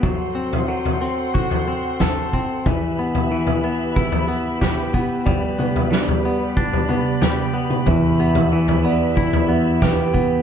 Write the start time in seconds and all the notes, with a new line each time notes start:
0.03 F#3 A4 C5 F#5 C6, kick, floor tom
0.35 C4
0.53 floor tom
0.68 F#3
0.86 floor tom
1.01 C4
1.34 F#4, kick
1.51 floor tom
1.68 C4
2.00 A4, kick, snare, floor tom
2.33 C4, kick
2.65 E3 G4 B4 E5 B5, kick, floor tom
2.99 B3
3.15 floor tom
3.31 E3
3.47 floor tom
3.64 B3
3.96 E4, kick
4.12 floor tom
4.28 B3
4.61 G4, kick, snare, floor tom
4.94 B3, kick
5.25 G3 D5 B5, kick, floor tom
5.59 B3, mid tom
5.76 floor tom
5.91 G3, snare
6.08 floor tom
6.25 B3
6.57 D4, kick
6.73 floor tom
6.89 B3, mid tom
7.22 G4, snare, floor tom, mid tom
7.54 B3
7.70 mid tom
7.86 E2 E3 E5, kick, floor tom
8.20 B3
8.35 floor tom
8.53 E3
8.68 floor tom
8.85 B3 D5
9.17 E4, kick
9.33 floor tom
9.48 B3 E5
9.82 G4 B4, kick, snare, floor tom
10.14 B3, kick